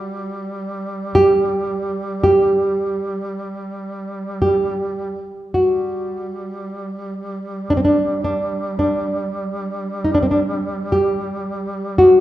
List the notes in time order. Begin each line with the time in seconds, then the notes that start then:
Already playing: G3 F#4
1.15 G4
2.24 G4
4.42 G4
5.54 G3 F#4
7.70 D4
7.77 C4
7.85 D4
8.24 D4
8.79 D4
10.04 D#4
10.15 D4
10.23 C4
10.31 D4
10.92 G4
11.98 F#4